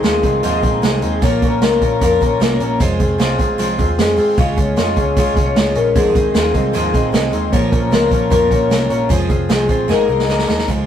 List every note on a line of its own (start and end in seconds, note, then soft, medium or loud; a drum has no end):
0.00 1.22 D#3 medium
0.00 0.23 G#3 medium
0.00 0.22 C4 medium
0.00 0.42 F4 medium
0.00 0.79 G#4 medium
0.00 snare loud
0.00 closed hi-hat medium
0.04 0.21 D#2 medium
0.04 0.24 C4 medium
0.04 0.23 D#4 medium
0.04 0.21 G#4 medium
0.23 0.40 C2 medium
0.23 0.42 G#3 soft
0.23 0.43 C4 soft
0.23 0.43 D#4 soft
0.23 0.43 G#4 medium
0.23 kick medium
0.23 closed hi-hat medium
0.43 0.60 D#2 loud
0.43 0.63 G#2 medium
0.43 0.63 F3 medium
0.43 0.63 G#3 medium
0.43 0.64 C4 medium
0.43 0.62 D#4 medium
0.43 1.62 F4 medium
0.43 0.61 G#4 medium
0.43 closed hi-hat loud
0.62 0.80 A#1 medium
0.62 0.81 G#3 soft
0.62 0.82 C4 medium
0.62 0.83 D#4 medium
0.62 0.82 G#4 medium
0.62 kick medium
0.62 closed hi-hat medium
0.82 1.00 C2 medium
0.82 1.02 G#3 medium
0.82 1.03 C4 medium
0.82 1.02 D#4 medium
0.82 1.01 G#4 medium
0.82 1.24 D#5 loud
0.82 snare loud
0.82 closed hi-hat medium
1.02 1.20 D#2 medium
1.02 1.22 G#3 soft
1.02 1.23 C4 medium
1.02 1.23 D#4 medium
1.02 1.22 G#4 medium
1.02 closed hi-hat medium
1.22 1.39 A#1 loud
1.22 1.42 A#2 medium
1.22 1.42 F3 medium
1.22 1.42 A#3 medium
1.22 1.42 C#4 medium
1.22 1.42 F4 medium
1.22 1.41 A#4 medium
1.22 1.63 C#5 loud
1.22 kick loud
1.22 closed hi-hat loud
1.42 1.59 A#1 loud
1.42 1.60 A#3 soft
1.42 1.61 C#4 soft
1.42 1.62 F4 medium
1.42 1.62 A#4 medium
1.42 kick loud
1.42 closed hi-hat medium
1.61 1.78 C#2 medium
1.61 1.81 A#3 medium
1.61 1.82 C#4 medium
1.61 1.82 F4 medium
1.61 2.01 A#4 medium
1.61 1.81 A#4 medium
1.61 snare loud
1.61 closed hi-hat medium
1.81 1.98 A#1 medium
1.81 2.01 A#3 soft
1.81 2.01 C#4 soft
1.81 2.02 F4 medium
1.81 2.01 A#4 medium
1.81 kick medium
1.81 closed hi-hat medium
2.01 2.18 F2 loud
2.01 2.21 A#2 medium
2.01 2.21 F3 medium
2.01 2.22 A#3 medium
2.01 2.22 C#4 medium
2.01 2.21 F4 medium
2.01 2.42 A#4 loud
2.01 2.19 A#4 medium
2.01 kick loud
2.01 closed hi-hat loud
2.20 2.38 A#1 medium
2.20 2.39 A#3 soft
2.20 2.40 C#4 soft
2.20 2.40 F4 medium
2.20 2.40 A#4 medium
2.20 kick loud
2.20 closed hi-hat medium
2.40 2.57 C2 medium
2.40 2.60 A#3 medium
2.40 2.61 C#4 medium
2.40 2.60 F4 medium
2.40 2.59 A#4 medium
2.40 2.82 C#5 medium
2.40 snare loud
2.40 closed hi-hat medium
2.60 2.77 A#1 medium
2.60 2.80 A#3 soft
2.60 2.80 C#4 medium
2.60 2.80 F4 soft
2.60 2.80 A#4 medium
2.60 closed hi-hat medium
2.80 2.97 F1 loud
2.80 3.00 F3 medium
2.80 3.00 G#3 medium
2.80 3.00 C4 medium
2.80 3.00 F4 medium
2.80 2.98 G#4 medium
2.80 3.17 C5 loud
2.80 kick loud
2.80 closed hi-hat loud
2.99 3.17 F1 loud
2.99 3.19 C4 soft
2.99 3.19 F4 soft
2.99 3.19 G#4 medium
2.99 kick loud
2.99 closed hi-hat medium
3.18 3.39 C2 loud
3.18 3.39 G#3 medium
3.18 3.39 C4 medium
3.18 3.39 F4 medium
3.18 3.37 G#4 medium
3.18 4.01 C5 loud
3.18 snare loud
3.18 closed hi-hat medium
3.38 3.59 G#1 medium
3.38 3.58 C4 soft
3.38 3.58 F4 soft
3.38 3.59 G#4 soft
3.38 kick medium
3.38 closed hi-hat medium
3.58 3.76 C2 loud
3.58 3.78 F3 medium
3.58 3.79 G#3 medium
3.58 3.79 C4 medium
3.58 3.79 F4 medium
3.58 3.77 G#4 medium
3.58 closed hi-hat loud
3.78 3.98 D#2 medium
3.78 3.98 C4 medium
3.78 3.99 F4 medium
3.78 3.98 G#4 medium
3.78 kick loud
3.78 closed hi-hat medium
3.98 4.15 F2 medium
3.98 4.18 G#3 medium
3.98 4.18 C4 medium
3.98 4.17 F4 medium
3.98 4.39 G#4 medium
3.98 4.16 G#4 medium
3.98 snare loud
3.98 closed hi-hat medium
4.17 4.39 G#2 medium
4.17 4.38 C4 soft
4.17 4.38 F4 medium
4.17 4.37 G#4 medium
4.17 open hi-hat medium
4.38 4.55 C#2 loud
4.38 4.58 C#3 medium
4.38 4.58 G#3 medium
4.38 4.58 C#4 medium
4.38 4.56 F4 medium
4.38 4.55 G#4 medium
4.38 4.79 F5 loud
4.38 kick loud
4.38 closed hi-hat loud
4.56 4.74 C#2 loud
4.56 4.76 C#4 soft
4.56 4.77 F4 soft
4.56 4.77 G#4 soft
4.56 kick loud
4.56 closed hi-hat medium
4.76 4.94 F2 medium
4.76 4.97 G#3 medium
4.76 4.97 C#4 medium
4.76 4.96 F4 medium
4.76 4.95 G#4 medium
4.76 5.18 D#5 loud
4.76 snare loud
4.76 closed hi-hat medium
4.96 5.14 C#2 medium
4.96 5.16 C#4 soft
4.96 5.17 F4 medium
4.96 5.16 G#4 medium
4.96 kick medium
4.96 closed hi-hat medium
5.16 5.37 G#1 loud
5.16 5.36 C#3 medium
5.16 5.37 G#3 medium
5.16 5.37 C#4 medium
5.16 5.36 F4 medium
5.16 5.34 G#4 medium
5.16 5.45 C#5 medium
5.16 kick loud
5.16 closed hi-hat loud
5.35 5.53 C2 medium
5.35 5.56 C#4 soft
5.35 5.57 F4 soft
5.35 5.56 G#4 medium
5.35 kick loud
5.35 closed hi-hat medium
5.46 5.77 C#5 medium
5.56 5.73 C#2 medium
5.56 5.76 G#3 medium
5.56 5.77 C#4 medium
5.56 5.75 F4 medium
5.56 5.74 G#4 medium
5.56 snare loud
5.56 closed hi-hat medium
5.75 5.93 A#1 loud
5.75 5.96 C#4 soft
5.75 5.96 F4 soft
5.75 5.95 G#4 medium
5.75 5.96 A#4 medium
5.75 closed hi-hat medium
5.95 6.12 G#1 loud
5.95 6.15 G#2 medium
5.95 7.53 D#3 medium
5.95 6.16 F3 medium
5.95 6.16 G#3 medium
5.95 6.16 C4 medium
5.95 6.15 D#4 medium
5.95 6.33 G#4 medium
5.95 6.14 G#4 medium
5.95 kick loud
5.95 closed hi-hat loud
6.15 6.32 G#1 medium
6.15 6.33 G#3 soft
6.15 6.34 C4 soft
6.15 6.35 D#4 medium
6.15 6.35 G#4 medium
6.15 kick loud
6.15 closed hi-hat medium
6.34 6.52 D#2 medium
6.34 6.54 G#3 medium
6.34 6.54 C4 medium
6.34 6.53 D#4 medium
6.34 6.74 F4 medium
6.34 7.16 G#4 medium
6.34 6.53 G#4 medium
6.34 snare loud
6.34 closed hi-hat medium
6.54 6.71 C2 medium
6.54 6.73 G#3 soft
6.54 6.73 C4 soft
6.54 6.74 D#4 medium
6.54 6.74 G#4 medium
6.54 kick medium
6.54 closed hi-hat medium
6.73 6.91 D#2 loud
6.73 6.94 G#2 medium
6.73 6.94 F3 medium
6.73 6.94 G#3 medium
6.73 6.94 C4 medium
6.73 6.93 D#4 medium
6.73 7.92 F4 medium
6.73 6.92 G#4 medium
6.73 closed hi-hat loud
6.93 7.11 A#1 medium
6.93 7.11 G#3 medium
6.93 7.12 C4 medium
6.93 7.13 D#4 medium
6.93 7.13 G#4 medium
6.93 kick loud
6.93 closed hi-hat medium
7.12 7.30 C2 medium
7.12 7.33 G#3 medium
7.12 7.33 C4 medium
7.12 7.32 D#4 medium
7.12 7.31 G#4 medium
7.12 7.50 D#5 medium
7.12 snare loud
7.12 closed hi-hat medium
7.32 7.53 D#2 medium
7.32 7.53 G#3 soft
7.32 7.53 C4 soft
7.32 7.53 D#4 medium
7.32 7.53 G#4 medium
7.32 closed hi-hat medium
7.52 7.70 A#1 loud
7.52 7.73 A#2 medium
7.52 7.73 F3 medium
7.52 7.73 A#3 medium
7.52 7.73 C#4 medium
7.52 7.72 F4 medium
7.52 7.71 A#4 medium
7.52 7.93 C#5 loud
7.52 kick loud
7.52 closed hi-hat medium
7.72 7.89 A#1 loud
7.72 7.90 A#3 soft
7.72 7.91 C#4 soft
7.72 7.92 F4 medium
7.72 7.92 A#4 medium
7.72 kick loud
7.72 closed hi-hat medium
7.91 8.09 C#2 medium
7.91 8.12 A#3 medium
7.91 8.11 C#4 medium
7.91 8.11 F4 medium
7.91 8.30 A#4 medium
7.91 8.10 A#4 medium
7.91 snare loud
7.91 closed hi-hat medium
8.11 8.28 A#1 medium
8.11 8.30 A#3 soft
8.11 8.31 C#4 medium
8.11 8.31 F4 medium
8.11 8.31 A#4 medium
8.11 kick medium
8.11 closed hi-hat medium
8.30 8.48 F2 loud
8.30 8.51 A#2 medium
8.30 8.51 F3 medium
8.30 8.51 A#3 medium
8.30 8.52 C#4 medium
8.30 8.51 F4 medium
8.30 8.52 A#4 medium
8.30 8.50 A#4 medium
8.30 kick loud
8.30 closed hi-hat loud
8.51 8.68 A#1 medium
8.51 8.69 A#3 soft
8.51 8.70 C#4 soft
8.51 8.71 F4 medium
8.51 8.71 A#4 medium
8.51 8.90 C#5 medium
8.51 kick loud
8.51 closed hi-hat medium
8.70 8.88 C2 medium
8.70 8.90 A#3 medium
8.70 8.90 C#4 medium
8.70 8.89 F4 medium
8.70 8.88 A#4 medium
8.70 snare loud
8.70 closed hi-hat medium
8.89 9.07 A#1 medium
8.89 9.10 A#3 soft
8.89 9.10 C#4 soft
8.89 9.10 F4 medium
8.89 9.10 A#4 medium
8.89 9.11 C#5 medium
8.89 closed hi-hat medium
9.09 9.27 F1 loud
9.09 9.29 F3 medium
9.09 9.30 G#3 medium
9.09 9.30 C4 medium
9.09 9.29 F4 medium
9.09 9.28 G#4 medium
9.09 9.29 C5 medium
9.09 kick loud
9.09 closed hi-hat medium
9.29 9.47 F1 loud
9.29 9.48 C4 soft
9.29 9.49 F4 soft
9.29 9.49 G#4 medium
9.29 9.50 C5 medium
9.29 kick loud
9.29 closed hi-hat medium
9.49 9.69 C2 medium
9.49 9.69 G#3 medium
9.49 9.69 C4 medium
9.49 9.69 F4 medium
9.49 9.71 G#4 medium
9.49 9.67 G#4 medium
9.49 snare loud
9.49 closed hi-hat medium
9.68 9.90 A#1 medium
9.68 9.89 C4 soft
9.68 9.89 F4 medium
9.68 9.88 G#4 medium
9.68 9.79 C5 medium
9.68 kick medium
9.68 closed hi-hat medium
9.88 10.06 G#1 loud
9.88 10.08 G#2 medium
9.88 10.09 D#3 medium
9.88 10.09 G#3 medium
9.88 10.27 A#3 medium
9.88 10.09 D#4 medium
9.88 10.08 G#4 medium
9.88 10.45 A#4 medium
9.88 10.07 A#4 medium
9.88 snare medium
10.08 10.25 C2 medium
10.08 10.26 G#3 soft
10.08 10.27 D#4 soft
10.08 10.28 G#4 medium
10.08 10.28 A#4 medium
10.19 snare medium
10.27 10.45 C#2 medium
10.27 10.48 G#3 medium
10.27 10.72 A#3 medium
10.27 10.48 D#4 medium
10.27 10.47 G#4 medium
10.27 10.46 A#4 medium
10.27 snare medium
10.39 snare medium
10.47 10.65 D#2 medium
10.47 10.66 G#3 soft
10.47 10.68 D#4 medium
10.47 10.68 G#4 medium
10.47 10.67 A#4 medium
10.47 snare loud
10.59 snare medium
10.67 10.85 C#2 medium
10.67 10.86 C#3 medium
10.67 10.86 F3 medium
10.67 10.86 G#3 medium
10.67 10.86 C#4 medium
10.67 10.86 F4 medium
10.67 10.85 G#4 medium
10.67 kick loud
10.67 closed hi-hat medium